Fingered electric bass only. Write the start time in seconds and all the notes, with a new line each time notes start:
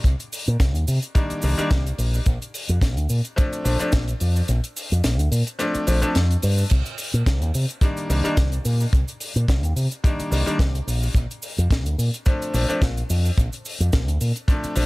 0.04 C2
0.48 A#2
0.60 C2
0.75 D#2
0.88 C3
1.31 muted fingered electric bass stroke
1.43 C2
1.58 muted fingered electric bass stroke
1.71 C2
1.98 A#1
2.26 A#1
2.69 F2
2.81 A#1
2.97 D2
3.09 A#2
3.65 A#1
3.93 A#1
4.21 F2
4.49 A#1
4.92 F2
5.04 A#1
5.19 D2
5.31 A#2
5.75 muted fingered electric bass stroke
5.87 A#1
6.03 muted fingered electric bass stroke
6.15 F2
6.43 G2
6.71 C2
7.14 A#2
7.27 C2
7.42 D#2
7.55 C3
8.10 C2
8.37 C2
8.65 A#2
8.93 C2
9.36 A#2
9.48 C2
9.63 D#2
9.76 C3
10.20 muted fingered electric bass stroke
10.32 C2
10.59 C2
10.87 A#1
11.15 A#1
11.58 F2
11.71 A#1
11.86 D2
11.98 A#2
12.54 A#1
12.82 A#1
13.10 F2
13.38 A#1
13.80 F2
13.93 A#1
14.08 D2
14.21 A#2
14.64 muted fingered electric bass stroke
14.76 A#1